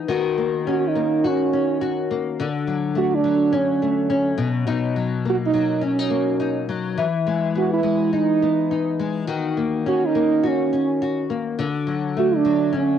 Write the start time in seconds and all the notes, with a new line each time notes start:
Already playing: B3 D#4
0.08 D#3 F#4
0.38 A#3
0.67 C#4 F#4
0.88 D#4
0.95 A#3
1.24 C#4 F#4
1.53 C#4
1.81 F#4
2.11 A#3
2.40 D3
2.67 F#3
2.95 A3 F#4
3.15 D4
3.24 F#3
3.52 C#4
3.82 A3
4.10 C#4
4.38 B2
4.67 B2 D#4
4.96 F#3
5.25 A#3
5.29 F#4
5.46 D#4
5.53 F#3
5.81 C#4
5.99 D#4
6.10 A#3
6.40 D#4
6.69 F#3
6.98 E3
7.27 G#3
7.55 B3 F#4
7.73 E4
7.83 G#3
8.13 D#4
8.42 B3
8.71 D#4
9.00 G#3
9.27 D#3 F#4
9.57 A#3
9.86 C#4 F#4
10.06 D#4
10.15 A#3
10.43 F#4
10.48 C#4
10.73 C#4
11.02 F#4
11.30 A#3
11.59 D3
11.87 F#3
12.17 A3 F#4
12.36 D4
12.45 F#3
12.73 C#4
12.78 C#4